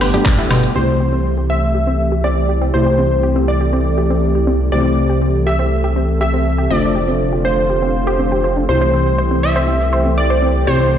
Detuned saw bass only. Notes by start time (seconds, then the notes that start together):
0.01 G1
0.51 G1
0.75 C2
2.74 C2
4.72 C2
6.71 F1
8.69 C2
10.67 C2